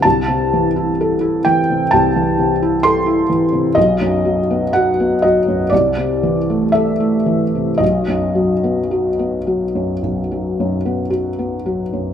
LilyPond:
<<
  \new Staff \with { instrumentName = "Felt piano" } { \time 4/4 \key b \phrygian \tempo 4 = 60 a''4. g''8 a''4 c'''8 r8 | dis''4 fis''8 dis''8 d''4 e''4 | dis''2. r4 | }
  \new Staff \with { instrumentName = "Felt piano" } { \clef bass \time 4/4 \key b \phrygian c,16 c16 e16 e'16 a'16 e'16 e16 c16 c,16 e16 c16 e'16 a'16 e'16 e16 c16 | b,,16 fis,16 fis16 b16 fis'16 b16 fis16 fis,16 c,16 c16 e16 a16 a'16 a16 e16 c16 | b,,16 fis,16 fis16 b16 fis'16 b16 fis16 fis,16 b,,16 fis16 fis,16 b16 fis'16 b16 fis16 fis,16 | }
>>